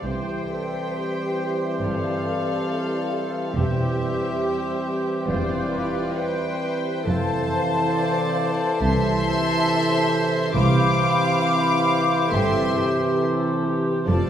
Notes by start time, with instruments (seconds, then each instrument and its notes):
0.02 double bass section C2, timpani C3, cello section C3, trombone section E3 G3, bassoon E3, french horn section C4 G4, clarinet G4, violin section C5 G5, oboe C5, viola section C5, flute section E5
0.49 viola section A4
0.95 viola section G4
1.81 double bass section G1, cello section G2, violin section A4 F5, viola section C5, flute section D5
2.26 viola section A4
2.70 viola section G4
3.13 viola section A4
3.55 double bass section E1, cello section E2, trombone section E3 G3, bassoon E3, french horn section C4 G4, violin section G4 E5, clarinet G4, viola section G4, flute section C5, oboe C5
5.27 double bass section E1, cello section E2, violin section F4 D5, flute section B4, viola section C5
5.73 viola section B4
6.18 violin section C5 G5, flute section E5
7.05 double bass section F1, cello section F2, trombone section C3 E3, bassoon E3, french horn section C4 A4, viola section A4, clarinet A4, violin section C5 A5, oboe C5, flute section F5
7.50 viola section C5
7.94 viola section D5
8.80 double bass section C2, cello section C2, trombone section C3 E3, french horn section C4 A4, viola section C5, violin section E5 C6, flute section A5
10.54 double bass section C2, timpani C3, trombone section C3 E3, cello section C3, bassoon E3, french horn section C4 G4, clarinet G4, oboe C5, violin section F5 D6, flute section B5
12.30 double bass section G1, cello section G2, trombone section C3 E3, french horn section C4 G4, viola section A4, violin section E5 C6, flute section G5
12.75 viola section G4
13.20 viola section A4
13.64 viola section G4
14.07 double bass section F1, cello section F2, trombone section D3 F3, bassoon F3, french horn section A3 F4, viola section F4, clarinet A4, oboe D5, violin section D5 A5, flute section F5